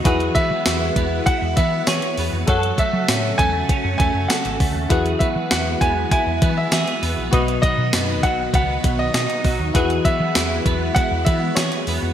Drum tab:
HH |xxx-x-x-x-x-xxo-|xxx-x-x-x-x-xxo-|xxx-x-x-x-x-xxo-|xxx-x-x-x-x-xxo-|
TB |----x-------x---|----x-------x---|----x-------x---|----x-------x---|
SD |----o-------o---|----o-------o---|----o-------o---|----o-------o---|
BD |o-o---o-o-o-----|o-o---o-o-o---o-|o-o---o-o-o-----|o-o---o-o-o---o-|

HH |xxx-x-x-x-x-xxo-|
TB |----x-------x---|
SD |----o-------o---|
BD |o-o---o-o-o-----|